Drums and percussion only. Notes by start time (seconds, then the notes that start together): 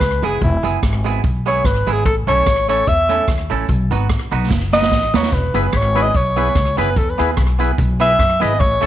0.01 kick, cross-stick, closed hi-hat
0.23 closed hi-hat
0.42 kick, closed hi-hat
0.65 closed hi-hat
0.83 kick, cross-stick, closed hi-hat
1.06 closed hi-hat
1.24 kick, closed hi-hat
1.46 closed hi-hat
1.65 kick, cross-stick, closed hi-hat
1.87 closed hi-hat
2.05 kick, closed hi-hat
2.28 closed hi-hat
2.46 kick, cross-stick, closed hi-hat
2.69 closed hi-hat
2.87 kick, closed hi-hat
3.10 closed hi-hat
3.28 kick, cross-stick, closed hi-hat
3.50 open hi-hat
3.69 kick, closed hi-hat
3.91 closed hi-hat
4.10 kick, cross-stick, closed hi-hat
4.32 closed hi-hat
4.50 kick, snare
4.73 snare
4.82 snare
4.91 kick, snare
5.14 snare
5.23 snare
5.32 kick, closed hi-hat
5.54 closed hi-hat
5.73 kick, cross-stick, closed hi-hat
5.95 closed hi-hat
6.14 kick, closed hi-hat
6.37 closed hi-hat
6.55 kick, cross-stick, closed hi-hat
6.78 closed hi-hat
6.96 kick, closed hi-hat
7.19 closed hi-hat
7.37 kick, cross-stick, closed hi-hat
7.59 closed hi-hat
7.78 kick, closed hi-hat
8.01 closed hi-hat
8.19 kick, cross-stick, closed hi-hat
8.42 closed hi-hat
8.60 kick, closed hi-hat
8.83 closed hi-hat